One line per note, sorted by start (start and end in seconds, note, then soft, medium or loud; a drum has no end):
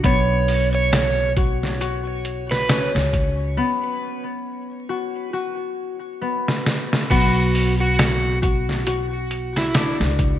0.00 3.14 B3 loud
0.00 1.95 D4 medium
0.00 0.71 F#4 medium
0.04 2.90 B1 medium
0.04 0.67 C#5 medium
0.04 kick loud
0.04 closed hi-hat medium
0.48 open hi-hat medium
0.75 1.31 C#5 loud
0.92 snare loud
0.92 closed hi-hat medium
1.36 1.80 F#4 medium
1.36 kick medium
1.36 closed hi-hat medium
1.63 snare soft
1.81 4.24 F#4 medium
1.81 closed hi-hat medium
2.25 closed hi-hat medium
2.51 2.90 B4 medium
2.51 snare soft
2.69 5.59 C#4 medium
2.69 snare loud
2.69 closed hi-hat medium
2.95 3.57 C#2 medium
2.95 snare medium
3.13 kick medium
3.13 closed hi-hat medium
3.57 6.21 B3 loud
4.89 5.33 F#4 medium
5.33 7.77 F#4 medium
6.21 7.10 B3 medium
6.48 snare medium
6.66 snare medium
6.93 snare medium
7.10 9.96 B1 medium
7.10 10.21 B3 medium
7.10 7.73 F#4 medium
7.10 kick loud
7.10 closed hi-hat medium
7.10 crash medium
7.55 open hi-hat medium
7.81 8.37 F#4 loud
7.99 snare loud
7.99 closed hi-hat medium
8.42 8.86 F#4 medium
8.42 kick medium
8.42 closed hi-hat medium
8.69 snare soft
8.87 10.39 F#4 medium
8.87 closed hi-hat medium
9.31 closed hi-hat medium
9.57 9.96 E4 medium
9.57 snare soft
9.74 10.39 D4 medium
9.74 snare loud
9.74 closed hi-hat medium
10.00 10.39 C#2 medium
10.00 snare soft
10.19 kick medium
10.19 closed hi-hat medium